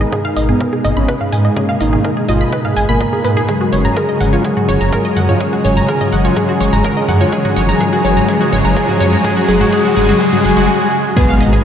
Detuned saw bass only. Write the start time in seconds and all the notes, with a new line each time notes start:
0.37 G#1
0.85 G#1
0.97 G#1
1.33 G#2
1.81 G#1
2.29 G#1
2.77 G#1
2.89 G#1
3.25 G#2
3.73 F#1
4.21 F#1
4.69 F#1
4.81 F#1
5.17 F#2
5.65 F#1
6.13 F#1
6.61 F#1
6.73 F#1
7.09 F#2
7.57 F#1
8.05 F#1
8.53 F#1
8.65 F#1
9.01 F#2
9.49 F#1
9.97 F#1
10.45 F#1
10.57 F#1
11.41 G#1